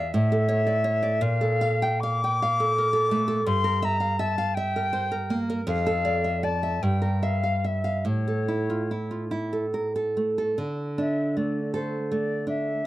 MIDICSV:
0, 0, Header, 1, 3, 480
1, 0, Start_track
1, 0, Key_signature, -1, "minor"
1, 0, Tempo, 719424
1, 815, Time_signature, 6, 3, 24, 8
1, 815, Tempo, 773196
1, 1775, Tempo, 716846
1, 3215, Tempo, 756620
1, 4175, Tempo, 789474
1, 4655, Tempo, 840336
1, 6575, Tempo, 760456
1, 8017, End_track
2, 0, Start_track
2, 0, Title_t, "Flute"
2, 0, Program_c, 0, 73
2, 0, Note_on_c, 0, 77, 95
2, 93, Note_off_c, 0, 77, 0
2, 97, Note_on_c, 0, 76, 110
2, 813, Note_on_c, 0, 77, 114
2, 823, Note_off_c, 0, 76, 0
2, 1298, Note_on_c, 0, 86, 127
2, 1307, Note_off_c, 0, 77, 0
2, 2238, Note_off_c, 0, 86, 0
2, 2242, Note_on_c, 0, 84, 119
2, 2496, Note_on_c, 0, 82, 108
2, 2506, Note_off_c, 0, 84, 0
2, 2730, Note_on_c, 0, 81, 108
2, 2740, Note_off_c, 0, 82, 0
2, 2964, Note_on_c, 0, 79, 114
2, 2974, Note_off_c, 0, 81, 0
2, 3513, Note_off_c, 0, 79, 0
2, 3699, Note_on_c, 0, 77, 112
2, 4178, Note_on_c, 0, 81, 95
2, 4187, Note_off_c, 0, 77, 0
2, 4413, Note_on_c, 0, 79, 91
2, 4422, Note_off_c, 0, 81, 0
2, 4660, Note_on_c, 0, 77, 94
2, 4668, Note_off_c, 0, 79, 0
2, 4909, Note_on_c, 0, 76, 84
2, 4917, Note_off_c, 0, 77, 0
2, 5142, Note_off_c, 0, 76, 0
2, 5150, Note_on_c, 0, 73, 87
2, 5847, Note_off_c, 0, 73, 0
2, 6838, Note_on_c, 0, 76, 81
2, 7069, Note_on_c, 0, 74, 70
2, 7079, Note_off_c, 0, 76, 0
2, 7300, Note_off_c, 0, 74, 0
2, 7304, Note_on_c, 0, 72, 80
2, 7542, Note_on_c, 0, 74, 82
2, 7551, Note_off_c, 0, 72, 0
2, 7771, Note_off_c, 0, 74, 0
2, 7775, Note_on_c, 0, 76, 93
2, 8017, Note_off_c, 0, 76, 0
2, 8017, End_track
3, 0, Start_track
3, 0, Title_t, "Nylon-string guitar"
3, 0, Program_c, 1, 24
3, 0, Note_on_c, 1, 40, 69
3, 0, Note_on_c, 1, 76, 54
3, 79, Note_off_c, 1, 40, 0
3, 93, Note_on_c, 1, 45, 76
3, 95, Note_off_c, 1, 76, 0
3, 213, Note_on_c, 1, 69, 64
3, 324, Note_on_c, 1, 73, 73
3, 402, Note_off_c, 1, 69, 0
3, 444, Note_on_c, 1, 74, 56
3, 517, Note_off_c, 1, 73, 0
3, 562, Note_on_c, 1, 73, 69
3, 566, Note_off_c, 1, 74, 0
3, 685, Note_on_c, 1, 74, 53
3, 761, Note_off_c, 1, 73, 0
3, 793, Note_off_c, 1, 45, 0
3, 808, Note_on_c, 1, 46, 82
3, 812, Note_off_c, 1, 74, 0
3, 932, Note_on_c, 1, 69, 64
3, 1057, Note_on_c, 1, 77, 68
3, 1134, Note_off_c, 1, 69, 0
3, 1185, Note_off_c, 1, 77, 0
3, 1188, Note_on_c, 1, 79, 58
3, 1310, Note_off_c, 1, 79, 0
3, 1318, Note_on_c, 1, 77, 69
3, 1444, Note_off_c, 1, 77, 0
3, 1446, Note_on_c, 1, 79, 57
3, 1556, Note_off_c, 1, 79, 0
3, 1561, Note_on_c, 1, 77, 72
3, 1670, Note_on_c, 1, 69, 65
3, 1737, Note_off_c, 1, 77, 0
3, 1785, Note_on_c, 1, 70, 59
3, 1850, Note_off_c, 1, 69, 0
3, 1881, Note_off_c, 1, 70, 0
3, 1883, Note_on_c, 1, 69, 66
3, 2006, Note_on_c, 1, 57, 67
3, 2076, Note_off_c, 1, 69, 0
3, 2116, Note_on_c, 1, 69, 64
3, 2198, Note_off_c, 1, 57, 0
3, 2218, Note_off_c, 1, 46, 0
3, 2241, Note_on_c, 1, 43, 83
3, 2242, Note_off_c, 1, 69, 0
3, 2359, Note_on_c, 1, 70, 64
3, 2479, Note_off_c, 1, 70, 0
3, 2482, Note_on_c, 1, 76, 71
3, 2598, Note_off_c, 1, 76, 0
3, 2601, Note_on_c, 1, 77, 54
3, 2725, Note_off_c, 1, 77, 0
3, 2729, Note_on_c, 1, 76, 65
3, 2851, Note_off_c, 1, 76, 0
3, 2854, Note_on_c, 1, 77, 59
3, 2973, Note_off_c, 1, 77, 0
3, 2982, Note_on_c, 1, 76, 66
3, 3109, Note_on_c, 1, 70, 59
3, 3171, Note_off_c, 1, 76, 0
3, 3221, Note_on_c, 1, 72, 60
3, 3292, Note_off_c, 1, 70, 0
3, 3335, Note_off_c, 1, 72, 0
3, 3340, Note_on_c, 1, 70, 64
3, 3458, Note_on_c, 1, 58, 60
3, 3527, Note_off_c, 1, 70, 0
3, 3582, Note_on_c, 1, 70, 66
3, 3648, Note_off_c, 1, 58, 0
3, 3664, Note_off_c, 1, 43, 0
3, 3690, Note_on_c, 1, 41, 78
3, 3698, Note_off_c, 1, 70, 0
3, 3816, Note_on_c, 1, 69, 65
3, 3932, Note_on_c, 1, 74, 64
3, 4007, Note_off_c, 1, 69, 0
3, 4055, Note_on_c, 1, 76, 51
3, 4125, Note_off_c, 1, 74, 0
3, 4175, Note_off_c, 1, 76, 0
3, 4175, Note_on_c, 1, 74, 61
3, 4295, Note_on_c, 1, 76, 49
3, 4363, Note_off_c, 1, 74, 0
3, 4389, Note_off_c, 1, 41, 0
3, 4412, Note_off_c, 1, 76, 0
3, 4416, Note_on_c, 1, 43, 72
3, 4531, Note_on_c, 1, 70, 50
3, 4658, Note_on_c, 1, 76, 61
3, 4724, Note_off_c, 1, 70, 0
3, 4777, Note_on_c, 1, 77, 49
3, 4844, Note_off_c, 1, 76, 0
3, 4893, Note_off_c, 1, 77, 0
3, 4897, Note_on_c, 1, 76, 52
3, 5009, Note_on_c, 1, 77, 45
3, 5087, Note_off_c, 1, 76, 0
3, 5113, Note_off_c, 1, 43, 0
3, 5127, Note_on_c, 1, 45, 61
3, 5132, Note_off_c, 1, 77, 0
3, 5257, Note_on_c, 1, 69, 48
3, 5376, Note_on_c, 1, 64, 50
3, 5450, Note_off_c, 1, 69, 0
3, 5498, Note_on_c, 1, 65, 45
3, 5568, Note_off_c, 1, 64, 0
3, 5616, Note_off_c, 1, 65, 0
3, 5620, Note_on_c, 1, 64, 48
3, 5733, Note_on_c, 1, 65, 42
3, 5807, Note_off_c, 1, 64, 0
3, 5849, Note_on_c, 1, 64, 52
3, 5852, Note_off_c, 1, 65, 0
3, 5972, Note_on_c, 1, 69, 48
3, 6042, Note_off_c, 1, 64, 0
3, 6093, Note_on_c, 1, 70, 45
3, 6166, Note_off_c, 1, 69, 0
3, 6215, Note_off_c, 1, 70, 0
3, 6217, Note_on_c, 1, 69, 48
3, 6338, Note_on_c, 1, 57, 44
3, 6412, Note_off_c, 1, 69, 0
3, 6459, Note_on_c, 1, 69, 48
3, 6528, Note_off_c, 1, 57, 0
3, 6548, Note_off_c, 1, 45, 0
3, 6573, Note_on_c, 1, 50, 60
3, 6574, Note_off_c, 1, 69, 0
3, 6826, Note_on_c, 1, 62, 50
3, 7070, Note_on_c, 1, 57, 46
3, 7210, Note_off_c, 1, 62, 0
3, 7304, Note_on_c, 1, 69, 56
3, 7443, Note_off_c, 1, 57, 0
3, 7542, Note_on_c, 1, 57, 54
3, 7677, Note_off_c, 1, 69, 0
3, 7765, Note_on_c, 1, 62, 47
3, 7921, Note_off_c, 1, 57, 0
3, 7988, Note_off_c, 1, 50, 0
3, 8010, Note_off_c, 1, 62, 0
3, 8017, End_track
0, 0, End_of_file